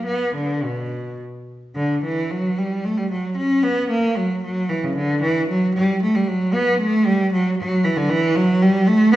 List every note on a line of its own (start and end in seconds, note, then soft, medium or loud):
0.05 0.33 B3 medium
0.35 0.62 D3 medium
0.64 1.19 B2 medium
1.76 2.01 D3 medium
2.04 2.30 E3 medium
2.31 2.57 F#3 medium
2.58 2.84 G3 medium
2.85 2.97 A3 medium
2.97 3.10 G3 medium
3.11 3.36 F#3 medium
3.37 3.62 C#4 medium
3.63 3.89 B3 medium
3.90 4.15 A#3 medium
4.16 4.42 F#3 medium
4.43 4.68 F#3 medium
4.69 4.82 E3 medium
4.84 4.96 C#3 medium
4.96 5.21 D3 medium
5.22 5.48 E3 medium
5.48 5.74 F#3 medium
5.75 6.01 G3 medium
6.02 6.15 A3 medium
6.15 6.28 G3 medium
6.28 6.54 F#3 medium
6.53 6.79 B3 medium
6.80 7.06 A3 medium
7.05 7.32 G3 medium
7.33 7.57 F#3 medium
7.58 7.83 F#3 medium
7.84 7.97 E3 medium
7.97 8.10 D3 medium
8.09 8.35 E3 loud
8.36 8.61 F#3 loud
8.62 8.87 G3 loud
8.87 9.13 A3 loud
9.12 9.16 B3 loud